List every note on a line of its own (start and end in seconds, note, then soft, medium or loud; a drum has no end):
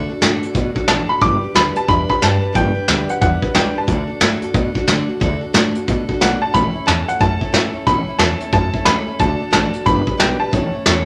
0.00 0.10 D4 medium
0.08 0.21 D4 soft
0.08 0.22 F#4 medium
0.08 0.22 A4 medium
0.08 muted upright bass stroke medium
0.21 0.39 A2 medium
0.21 0.43 D3 medium
0.21 0.43 A3 medium
0.21 0.43 D4 medium
0.21 0.43 F#4 loud
0.21 0.42 A4 loud
0.21 snare loud
0.21 closed hi-hat medium
0.42 0.55 F#4 soft
0.42 0.55 A4 medium
0.42 muted upright bass stroke medium
0.42 closed hi-hat medium
0.46 0.54 D4 soft
0.54 0.72 B2 medium
0.54 0.75 A3 medium
0.54 0.76 D4 medium
0.54 0.76 F#4 medium
0.54 0.74 A4 medium
0.54 kick loud
0.54 closed hi-hat medium
0.75 0.88 D4 soft
0.75 0.89 F#4 medium
0.75 0.88 A4 medium
0.75 muted upright bass stroke medium
0.75 kick medium
0.87 1.05 A1 medium
0.87 1.09 D3 medium
0.87 1.10 A3 medium
0.87 1.09 D4 medium
0.87 1.08 F#4 medium
0.87 1.06 A4 medium
0.87 1.10 A5 loud
0.87 snare loud
0.87 closed hi-hat medium
1.07 1.20 D4 soft
1.07 1.21 F#4 soft
1.07 1.21 A4 medium
1.07 1.22 B5 medium
1.07 muted upright bass stroke medium
1.21 1.39 G1 medium
1.21 1.42 G3 medium
1.21 1.42 D4 medium
1.21 1.42 G4 medium
1.21 1.40 B4 medium
1.21 1.53 D6 loud
1.21 kick loud
1.21 closed hi-hat medium
1.41 1.54 D4 soft
1.41 1.55 G4 soft
1.41 1.54 B4 soft
1.41 muted upright bass stroke medium
1.54 1.72 D2 medium
1.54 1.76 G3 medium
1.54 1.76 D4 medium
1.54 1.75 G4 medium
1.54 1.73 B4 medium
1.54 1.61 B5 loud
1.54 snare loud
1.54 closed hi-hat medium
1.74 1.88 D4 soft
1.74 1.89 G4 soft
1.74 1.88 B4 soft
1.74 1.88 A5 medium
1.74 closed hi-hat medium
1.88 2.06 E2 medium
1.88 2.09 G3 medium
1.88 2.09 D4 medium
1.88 2.09 G4 medium
1.88 2.07 B4 medium
1.88 2.08 B5 loud
1.88 kick loud
1.88 closed hi-hat medium
2.08 2.21 D4 soft
2.08 2.21 G4 soft
2.08 2.21 B4 medium
2.08 2.22 B5 loud
2.08 kick medium
2.21 2.39 G2 medium
2.21 2.42 G3 medium
2.21 2.42 D4 medium
2.21 2.43 G4 medium
2.21 2.40 B4 medium
2.21 2.57 A5 medium
2.21 snare loud
2.21 closed hi-hat medium
2.42 2.52 D4 soft
2.42 2.53 G4 medium
2.42 2.54 B4 medium
2.52 2.73 G1 medium
2.52 2.74 G3 medium
2.52 2.75 D4 medium
2.52 2.74 G4 medium
2.52 2.73 B4 medium
2.52 3.11 G5 medium
2.52 kick loud
2.52 closed hi-hat medium
2.75 2.87 D4 soft
2.75 2.88 G4 soft
2.75 2.88 B4 soft
2.75 muted upright bass stroke medium
2.88 3.06 D2 medium
2.88 3.09 G3 medium
2.88 3.09 D4 medium
2.88 3.08 G4 loud
2.88 3.07 B4 loud
2.88 snare loud
2.88 closed hi-hat medium
3.08 3.21 D4 soft
3.08 3.21 G4 soft
3.08 3.21 B4 medium
3.08 3.15 F#5 medium
3.08 muted upright bass stroke medium
3.08 closed hi-hat medium
3.21 3.39 E2 loud
3.21 3.42 G3 medium
3.21 3.42 D4 medium
3.21 3.42 G4 medium
3.21 3.41 B4 medium
3.21 3.56 F#5 medium
3.21 kick loud
3.21 closed hi-hat medium
3.42 3.54 D4 soft
3.42 3.54 G4 soft
3.42 3.54 B4 medium
3.42 kick medium
3.54 3.72 C#2 loud
3.54 3.75 G3 medium
3.54 3.76 D4 medium
3.54 3.76 G4 medium
3.54 3.74 B4 loud
3.54 3.76 G5 medium
3.54 snare loud
3.54 closed hi-hat medium
3.75 3.87 D4 soft
3.75 3.88 G4 soft
3.75 3.88 B4 medium
3.75 4.39 A5 medium
3.75 muted upright bass stroke medium
3.87 4.05 D2 loud
3.87 4.08 D3 medium
3.87 4.09 A3 medium
3.87 4.09 D4 medium
3.87 4.08 F#4 medium
3.87 4.06 A4 medium
3.87 kick loud
3.87 closed hi-hat medium
4.08 4.20 D4 soft
4.08 4.20 F#4 soft
4.08 4.20 A4 medium
4.08 muted upright bass stroke medium
4.20 4.39 A2 medium
4.20 4.41 D3 medium
4.20 4.42 A3 medium
4.20 4.42 D4 loud
4.20 4.42 F#4 loud
4.20 4.41 A4 loud
4.20 snare loud
4.20 closed hi-hat medium
4.42 4.54 D4 soft
4.42 4.55 F#4 medium
4.42 4.54 A4 medium
4.42 muted upright bass stroke medium
4.42 closed hi-hat medium
4.54 4.71 B2 medium
4.54 4.75 A3 medium
4.54 4.75 D4 medium
4.54 4.75 F#4 medium
4.54 4.73 A4 medium
4.54 kick loud
4.54 closed hi-hat medium
4.74 4.87 D4 medium
4.74 4.87 F#4 medium
4.74 4.87 A4 medium
4.74 muted upright bass stroke medium
4.74 kick medium
4.87 5.08 D3 medium
4.87 5.05 D3 loud
4.87 5.08 A3 medium
4.87 5.09 D4 medium
4.87 5.08 F#4 loud
4.87 5.07 A4 loud
4.87 snare loud
4.87 closed hi-hat medium
5.08 5.20 D4 soft
5.08 5.20 F#4 medium
5.08 5.21 A4 medium
5.08 muted upright bass stroke medium
5.20 5.38 D2 loud
5.20 5.41 D3 medium
5.20 5.42 A3 medium
5.20 5.42 D4 medium
5.20 5.42 F#4 medium
5.20 5.40 A4 loud
5.20 kick loud
5.20 closed hi-hat medium
5.41 5.53 D4 soft
5.41 5.53 F#4 medium
5.41 5.54 A4 medium
5.41 muted upright bass stroke medium
5.53 5.72 A2 medium
5.53 5.74 D3 medium
5.53 5.75 A3 loud
5.53 5.75 D4 loud
5.53 5.75 F#4 medium
5.53 5.74 A4 loud
5.53 snare loud
5.53 closed hi-hat medium
5.75 5.88 D4 medium
5.75 5.88 F#4 medium
5.75 5.87 A4 medium
5.75 muted upright bass stroke medium
5.75 closed hi-hat medium
5.87 6.05 B2 loud
5.87 6.08 A3 medium
5.87 6.09 D4 medium
5.87 6.08 F#4 medium
5.87 6.07 A4 medium
5.87 kick loud
5.87 closed hi-hat medium
6.08 6.21 D4 soft
6.08 6.21 F#4 medium
6.08 6.21 A4 medium
6.08 muted upright bass stroke medium
6.08 kick medium
6.20 6.38 B1 loud
6.20 6.41 D3 medium
6.20 6.42 A3 medium
6.20 6.42 D4 medium
6.20 6.42 F#4 medium
6.20 6.40 A4 medium
6.20 6.43 F#5 medium
6.20 snare loud
6.20 closed hi-hat medium
6.41 6.54 D4 soft
6.41 6.54 F#4 soft
6.41 6.54 A4 medium
6.41 6.53 A5 loud
6.41 muted upright bass stroke medium
6.53 6.72 A1 loud
6.53 6.74 A2 medium
6.53 6.75 E3 medium
6.53 6.75 A3 medium
6.53 6.74 C#4 medium
6.53 6.73 E4 medium
6.53 6.72 A4 medium
6.53 6.88 B5 loud
6.53 kick loud
6.53 closed hi-hat medium
6.73 6.86 A3 soft
6.73 6.86 C#4 soft
6.73 6.86 E4 soft
6.73 6.86 A4 soft
6.73 muted upright bass stroke medium
6.86 7.05 E2 medium
6.86 7.07 A2 medium
6.86 7.07 E3 medium
6.86 7.08 A3 medium
6.86 7.07 C#4 medium
6.86 7.06 E4 medium
6.86 7.05 A4 medium
6.86 7.08 A5 loud
6.86 snare loud
6.86 closed hi-hat medium
7.06 7.18 A3 soft
7.06 7.19 C#4 soft
7.06 7.19 E4 soft
7.06 7.19 A4 medium
7.06 7.21 F#5 medium
7.06 muted upright bass stroke medium
7.06 closed hi-hat medium
7.19 7.38 F#2 medium
7.19 7.41 A3 medium
7.19 7.40 C#4 medium
7.19 7.39 E4 medium
7.19 7.38 A4 medium
7.19 7.83 A5 loud
7.19 kick loud
7.19 closed hi-hat medium
7.39 7.51 A3 soft
7.39 7.52 C#4 soft
7.39 7.53 E4 soft
7.39 7.53 A4 medium
7.39 muted upright bass stroke medium
7.39 kick medium
7.52 7.74 A2 medium
7.52 7.71 A2 medium
7.52 7.74 E3 medium
7.52 7.74 A3 medium
7.52 7.74 C#4 medium
7.52 7.73 E4 medium
7.52 7.71 A4 medium
7.52 snare loud
7.52 closed hi-hat medium
7.73 7.86 A3 soft
7.73 7.86 C#4 medium
7.73 7.87 E4 medium
7.73 7.86 A4 medium
7.73 muted upright bass stroke medium
7.86 8.04 A1 loud
7.86 8.08 A2 medium
7.86 8.08 E3 medium
7.86 8.08 A3 medium
7.86 8.08 C#4 medium
7.86 8.07 E4 medium
7.86 8.06 A4 medium
7.86 8.18 B5 medium
7.86 kick loud
7.86 closed hi-hat medium
8.06 8.18 A3 soft
8.06 8.19 C#4 soft
8.06 8.19 E4 soft
8.06 8.19 A4 soft
8.06 muted upright bass stroke medium
8.18 8.37 E2 medium
8.18 8.40 A2 medium
8.18 8.40 E3 medium
8.18 8.40 A3 medium
8.18 8.41 C#4 loud
8.18 8.39 E4 medium
8.18 8.38 A4 medium
8.18 8.52 A5 loud
8.18 snare loud
8.18 closed hi-hat medium
8.39 8.51 A3 soft
8.39 8.53 C#4 soft
8.39 8.53 E4 soft
8.39 8.53 A4 medium
8.39 closed hi-hat medium
8.52 8.70 F#2 medium
8.52 8.74 A3 medium
8.52 8.75 C#4 medium
8.52 8.73 E4 medium
8.52 8.72 A4 medium
8.52 8.88 A5 loud
8.52 kick loud
8.52 closed hi-hat medium
8.73 8.85 A3 soft
8.73 8.85 C#4 soft
8.73 8.86 E4 medium
8.73 8.86 A4 soft
8.73 muted upright bass stroke medium
8.73 kick medium
8.85 9.04 C#2 medium
8.85 9.07 A2 medium
8.85 9.07 E3 medium
8.85 9.07 A3 medium
8.85 9.07 C#4 medium
8.85 9.06 E4 medium
8.85 9.05 A4 medium
8.85 9.20 B5 loud
8.85 snare loud
8.85 closed hi-hat medium
9.06 9.18 A3 soft
9.06 9.20 C#4 medium
9.06 9.20 E4 soft
9.06 9.19 A4 medium
9.06 muted upright bass stroke medium
9.19 9.37 D2 loud
9.19 9.40 D3 medium
9.19 9.40 A3 medium
9.19 9.41 D4 medium
9.19 9.39 F#4 medium
9.19 9.38 A4 medium
9.19 9.51 A5 loud
9.19 kick loud
9.19 closed hi-hat medium
9.39 9.51 D4 soft
9.39 9.51 F#4 soft
9.39 9.52 A4 medium
9.39 muted upright bass stroke medium
9.51 9.70 A1 medium
9.51 9.73 D3 medium
9.51 9.73 A3 medium
9.51 9.73 D4 medium
9.51 9.73 F#4 medium
9.51 9.72 A4 medium
9.51 9.84 A5 loud
9.51 snare loud
9.51 closed hi-hat medium
9.73 9.84 D4 soft
9.73 9.86 F#4 soft
9.73 9.86 A4 medium
9.73 muted upright bass stroke medium
9.73 closed hi-hat medium
9.84 10.04 G1 medium
9.84 10.06 G3 medium
9.84 10.07 D4 medium
9.84 10.06 G4 medium
9.84 10.04 B4 medium
9.84 10.20 B5 loud
9.84 kick loud
9.84 closed hi-hat medium
10.06 10.17 D4 soft
10.06 10.18 G4 medium
10.06 10.19 B4 soft
10.06 kick medium
10.17 10.37 B1 loud
10.17 10.39 G3 medium
10.17 10.40 D4 medium
10.17 10.39 G4 medium
10.17 10.38 B4 medium
10.17 10.41 G5 medium
10.17 snare loud
10.17 closed hi-hat medium
10.39 10.53 D4 soft
10.39 10.53 G4 medium
10.39 10.52 B4 medium
10.39 11.05 A5 medium
10.39 muted upright bass stroke medium
10.51 10.70 A1 medium
10.51 10.73 A2 medium
10.51 10.73 E3 medium
10.51 10.73 A3 medium
10.51 10.73 C#4 medium
10.51 10.72 E4 medium
10.51 10.71 C#5 medium
10.51 kick loud
10.51 closed hi-hat medium
10.72 10.85 A3 soft
10.72 10.86 C#4 soft
10.72 10.86 E4 soft
10.72 10.85 C#5 soft
10.72 muted upright bass stroke medium
10.86 11.03 E2 loud
10.86 11.05 A2 medium
10.86 11.05 E3 loud
10.86 11.05 A3 medium
10.86 11.05 C#4 loud
10.86 11.05 E4 loud
10.86 11.05 C#5 loud
10.86 snare loud
10.86 closed hi-hat medium